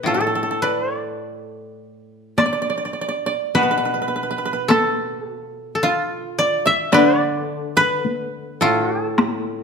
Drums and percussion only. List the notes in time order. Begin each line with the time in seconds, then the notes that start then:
2.38 taiko rim, taiko high
3.55 taiko high
4.70 taiko rim, taiko high
6.93 taiko rim, taiko high
8.05 taiko high
9.18 taiko rim, taiko high